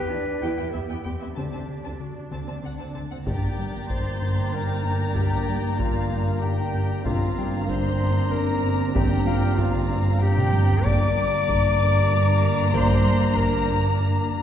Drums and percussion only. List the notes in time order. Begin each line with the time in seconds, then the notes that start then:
3.27 taiko
3.90 taiko
5.16 taiko
5.80 taiko
7.06 taiko
7.69 taiko
8.95 taiko
9.58 taiko
10.38 taiko mid
10.53 taiko high
10.69 taiko low
10.85 taiko
11.48 taiko
12.74 taiko
13.36 taiko